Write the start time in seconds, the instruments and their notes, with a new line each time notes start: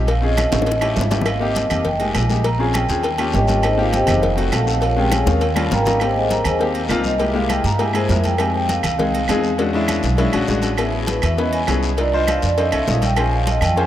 Already playing: upright bass A#1
0.07 vibraphone F5, cowbell, high conga, low agogo, long guiro
0.22 grand piano C4 C#4 F4 G#4, vibraphone D#5, high conga
0.37 vibraphone D#5, cowbell, high conga, low timbale, low agogo, short guiro, claves
0.51 upright bass A1, grand piano C4 C#4 F4 G#4, cowbell, high bongo, high conga, high timbale, short guiro
0.62 high bongo
0.66 vibraphone D#5, cowbell, high conga, low agogo, long guiro
0.72 high bongo
0.81 grand piano C#4 D#4 E4 G4, vibraphone E5, high bongo, high conga, low timbale, low agogo, claves
0.96 upright bass G#1, cowbell, high conga, low timbale, short guiro
1.01 low bongo
1.10 grand piano C#4 D#4 E4 G4, cowbell, low bongo, high conga, low timbale, low agogo, short guiro
1.21 low bongo
1.26 vibraphone F5, cowbell, high conga, low agogo, long guiro, claves
1.40 grand piano A#3 C4 D#4 G4, vibraphone D#5, high conga
1.55 cowbell, high conga, low timbale, low agogo, short guiro
1.70 upright bass F1, grand piano A#3 C4 D#4 G4, cowbell, high conga, low conga, low agogo, short guiro, claves
1.85 vibraphone G5, cowbell, high conga, low conga, long guiro
1.99 grand piano G#3 A#3 D#4 G4, vibraphone G#5, high conga, low agogo
2.15 upright bass A#1, cowbell, high conga, low timbale, low agogo, short guiro, claves
2.29 grand piano G#3 A#3 D#4 G4, high conga, short guiro
2.44 vibraphone A#5, cowbell, high conga, low agogo, long guiro
2.59 grand piano C4 C#4 F4 G#4, vibraphone G#5, high conga
2.73 vibraphone G5, cowbell, high conga, low timbale, low agogo, short guiro, claves
2.89 upright bass D#2, grand piano C4 C#4 F4 G#4, cowbell, high conga, short guiro
3.03 cowbell, high conga, low agogo, long guiro
3.18 grand piano A#3 C#4 F4 G4, high conga, low agogo, claves
3.32 upright bass G#1, vibraphone G4 C#5 D#5 G5, cowbell, high conga, low timbale, short guiro
3.47 grand piano A#3 C#4 F4 G4, cowbell, high conga, low agogo, short guiro
3.63 vibraphone D#4 G#4 C5 D#5, cowbell, high conga, low agogo, long guiro, claves
3.77 grand piano A#3 C4 D#4 G4, vibraphone F4 F5, high conga
3.93 vibraphone G4 C5 D#5 G5, cowbell, high conga, low timbale, low agogo, short guiro
4.06 upright bass F1, grand piano A#3 C4 D#4 G4, vibraphone D#4 G#4 C5 D#5, cowbell, high conga, low conga, low agogo, short guiro, claves
4.22 cowbell, high conga, low conga, long guiro
4.36 grand piano A3 C4 D#4 F#4, high conga, low agogo
4.52 upright bass A#1, vibraphone A4 F5 F#5 A5, cowbell, high conga, low timbale, low agogo, short guiro, claves
4.66 grand piano A3 C4 D#4 A4, short guiro
4.81 vibraphone F4 A#4 C#5 F5, cowbell, high conga, low agogo, long guiro
4.96 grand piano G#3 C4 C#4 F4, vibraphone G4 G5, high conga
5.11 vibraphone G#4 C#5 G#5, cowbell, high bongo, high conga, low timbale, low agogo, short guiro, claves
5.25 upright bass D#2, grand piano G#3 C4 C#4 F4, vibraphone F4 A#4 C#5 F5, cowbell, high bongo, high conga, short guiro
5.41 cowbell, high conga, low agogo, long guiro
5.55 grand piano G3 A#3 C#4 F4, low bongo, high conga, low agogo, claves
5.71 upright bass G#1, vibraphone A#4 F5 G5 A#5, cowbell, low bongo, high conga, low timbale, short guiro
5.85 grand piano G3 A#3 C#4 D#4, cowbell, low bongo, high conga, low agogo, short guiro
6.00 grand piano A#3 C4 D#4 G4, vibraphone G4 G5, cowbell, high conga, low agogo, long guiro, claves
6.16 vibraphone G#4 C5 D#5 G#5, high conga
6.30 vibraphone A#4 A#5, cowbell, high conga, low timbale, low agogo, short guiro
6.45 upright bass D#2, vibraphone G#4 C5 D#5 G#5, cowbell, high conga, low conga, low agogo, short guiro, claves
6.59 grand piano A#3 C4 D#4 G4, cowbell, high conga, long guiro
6.75 high conga, low agogo
6.88 upright bass C2, grand piano A#3 C4 D#4 F4, cowbell, high conga, low timbale, low agogo, short guiro, claves
7.04 vibraphone D#5, high conga, short guiro
7.18 grand piano G#3 A#3 E4 G4, vibraphone E5, cowbell, high conga, low agogo, long guiro
7.33 grand piano G#3 A#3 E4 G4, vibraphone F5, high conga
7.49 vibraphone G5, cowbell, high conga, low timbale, low agogo, short guiro, claves
7.64 upright bass G2, vibraphone A#5, cowbell, high conga, short guiro
7.78 grand piano G#3 A#3 E4 G4, vibraphone G#5, cowbell, high conga, low agogo, long guiro
7.93 grand piano G#3 A#3 E4 G#4, vibraphone C5, high conga, low agogo, claves
8.09 upright bass F2, grand piano G#3 A#3 E4 A#4, vibraphone E5, cowbell, high conga, low timbale, short guiro
8.24 vibraphone G5, cowbell, high conga, low agogo, short guiro
8.38 grand piano G#3 C4 D#4 G4, vibraphone G#5, cowbell, high conga, low agogo, long guiro, claves
8.55 vibraphone G5, high conga
8.69 vibraphone F5, cowbell, high conga, low timbale, low agogo, short guiro
8.83 upright bass C2, vibraphone F5, cowbell, high conga, low conga, low agogo, short guiro, claves
8.98 grand piano G#3 C4 D#4 G#4, cowbell, high conga, low conga, long guiro
9.14 high conga, low agogo
9.28 upright bass E2, grand piano G#3 C4 D#4 G#4, cowbell, high conga, low timbale, low agogo, short guiro, claves
9.44 short guiro
9.58 grand piano G#3 C#4 D4 F#4, cowbell, high conga, low agogo, long guiro
9.73 grand piano G#3 C#4 D4 E4, high conga
9.88 cowbell, high conga, low timbale, low agogo, short guiro, claves
10.03 upright bass B1, cowbell, high conga, short guiro
10.17 grand piano G#3 C#4 D4 E4, cowbell, low agogo, long guiro
10.33 upright bass A#1, grand piano G#3 C#4 D4 F#4, high conga, low agogo, claves
10.47 upright bass A1, grand piano G#3 C#4 D4 F#4, cowbell, high conga, low timbale, short guiro
10.62 cowbell, high conga, low agogo, short guiro
10.77 grand piano B3 C#4 E4 G#4, vibraphone E5, cowbell, low agogo, long guiro, claves
10.93 vibraphone G#4, high conga
11.07 vibraphone B4, cowbell, high conga, low timbale, low agogo, short guiro
11.22 upright bass E2, vibraphone E5, cowbell, high conga, low conga, low agogo, short guiro, claves
11.38 grand piano B3 C#4 E4 B4, vibraphone D#5, cowbell, long guiro
11.53 vibraphone G#5, high conga, low agogo
11.67 upright bass C2, grand piano B3 C#4 E4 G#4, cowbell, high conga, low timbale, low agogo, short guiro, claves
11.83 short guiro
11.97 grand piano D4 D#4 F4 A#4, vibraphone D5, cowbell, high conga, low agogo, long guiro
12.13 grand piano D4 D#4 F4 C5, vibraphone D#5, high conga
12.27 cowbell, high conga, low timbale, low agogo, short guiro, claves
12.42 upright bass F2, vibraphone D5, cowbell, high conga, short guiro
12.57 grand piano C#4 D#4 A4 C5, vibraphone D#5, cowbell, high conga, low agogo, long guiro
12.72 upright bass C2, grand piano C#4 D#4 A4 C#5, vibraphone E5, high conga, low agogo, claves
12.87 upright bass A#1, grand piano C#4 D#4 A4 D#5, cowbell, high conga, low timbale, short guiro
13.02 vibraphone G5, cowbell, high conga, low agogo, short guiro
13.16 grand piano C#4 F4 G#4 C5, vibraphone G#5, cowbell, high conga, low agogo, long guiro, claves
13.33 vibraphone F5, high conga
13.47 vibraphone D#5, cowbell, high conga, low timbale, low agogo, short guiro
13.61 upright bass F2, vibraphone G5, cowbell, high conga, low conga, low agogo, short guiro, claves
13.76 grand piano C#4 F4 G#4 C5, vibraphone G#5, cowbell, high conga, long guiro